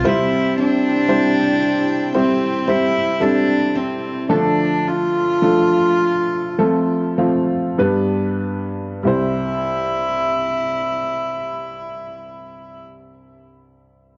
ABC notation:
X:1
M:4/4
L:1/8
Q:1/4=51
K:C
V:1 name="Analog synth pad"
[CEGg]8 | z8 | z8 |]
V:2 name="Cello"
E D3 C E D C | D F4 z3 | E8 |]
V:3 name="Steel-string acoustic guitar"
C, C E c E C E C | z8 | z8 |]
V:4 name="Grand piano"
[G,CEc]2 [G,CEc]2 [G,CEc] [G,CEc] [G,CEA]2 | [F,A,DA]2 [F,A,DA]2 [F,A,CA] [F,A,CF] [G,B,DB]2 | [G,Ec]8 |]
V:5 name="Grand piano" clef=bass
C,3 z4 z | D,3 z3 G,,2 | C,,8 |]